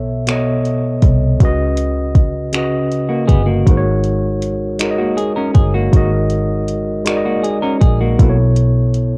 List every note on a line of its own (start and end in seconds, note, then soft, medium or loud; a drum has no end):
0.00 0.99 B1 loud
0.00 0.26 B2 medium
0.00 0.28 B3 medium
0.00 0.29 A4 medium
0.00 0.30 C#5 medium
0.00 1.42 E5 medium
0.26 1.00 B2 medium
0.26 1.01 B3 medium
0.26 1.02 A4 medium
0.26 finger snap loud
0.26 closed hi-hat medium
0.30 1.02 C#5 medium
0.30 1.03 D#5 medium
0.65 closed hi-hat soft
1.02 1.37 C2 medium
1.02 kick medium
1.02 closed hi-hat medium
1.39 3.31 C#2 medium
1.39 2.13 C#3 medium
1.39 2.14 C#4 medium
1.39 2.15 F#4 medium
1.39 2.15 B4 medium
1.39 kick loud
1.39 closed hi-hat medium
1.45 2.16 D#5 medium
1.77 closed hi-hat medium
2.15 kick medium
2.15 closed hi-hat soft
2.52 3.26 C#3 medium
2.52 3.27 C#4 medium
2.52 3.28 F#4 medium
2.52 finger snap loud
2.52 closed hi-hat medium
2.57 3.29 B4 medium
2.57 3.29 D#5 medium
2.92 closed hi-hat soft
3.09 3.28 A#3 medium
3.09 3.27 F#4 medium
3.28 3.63 G1 medium
3.28 3.46 B3 medium
3.28 3.46 G#4 medium
3.28 kick medium
3.28 closed hi-hat medium
3.46 3.83 A#3 medium
3.46 3.83 F#4 medium
3.66 5.52 G#1 medium
3.66 4.40 G#3 medium
3.66 4.40 D#4 medium
3.66 4.41 F#4 medium
3.66 kick loud
3.66 closed hi-hat medium
3.70 4.42 A#4 medium
3.70 3.75 C5 medium
3.77 4.46 C#5 medium
4.04 closed hi-hat soft
4.42 closed hi-hat soft
4.79 5.53 G#3 medium
4.79 5.54 D#4 medium
4.79 5.54 F#4 medium
4.79 5.55 A#4 medium
4.79 finger snap loud
4.79 closed hi-hat medium
4.84 4.89 C#5 medium
4.91 5.59 D#5 medium
4.98 5.17 A#3 medium
4.98 5.16 F#4 medium
5.17 5.35 G#4 medium
5.17 closed hi-hat soft
5.36 5.55 C#4 medium
5.36 5.54 A#4 medium
5.54 5.90 G1 medium
5.54 5.73 G#4 medium
5.54 kick medium
5.54 closed hi-hat soft
5.74 6.11 A#3 medium
5.74 6.10 F#4 medium
5.91 7.78 G#1 medium
5.91 6.66 G#3 medium
5.91 6.66 D#4 medium
5.91 6.67 F#4 medium
5.91 kick medium
5.91 closed hi-hat medium
5.95 6.68 A#4 medium
5.95 6.68 D#5 medium
6.30 closed hi-hat medium
6.68 closed hi-hat soft
7.05 7.79 G#3 medium
7.05 7.80 D#4 medium
7.05 7.80 F#4 medium
7.05 7.81 A#4 medium
7.05 finger snap loud
7.05 closed hi-hat medium
7.10 7.15 D5 medium
7.17 7.85 D#5 medium
7.25 7.43 A#3 medium
7.25 7.43 F#4 medium
7.43 7.62 G#4 medium
7.43 closed hi-hat medium
7.62 7.81 C#4 medium
7.62 7.80 A#4 medium
7.81 8.16 A#1 medium
7.81 7.99 G#4 medium
7.81 kick medium
7.81 closed hi-hat medium
8.01 8.37 A#3 medium
8.01 8.36 F#4 medium
8.18 9.18 B1 loud
8.18 8.92 B2 medium
8.18 8.93 B3 medium
8.18 8.94 E4 medium
8.18 8.94 A4 medium
8.18 kick loud
8.18 closed hi-hat medium
8.23 8.28 B4 medium
8.30 8.98 C#5 medium
8.56 closed hi-hat medium
8.94 closed hi-hat soft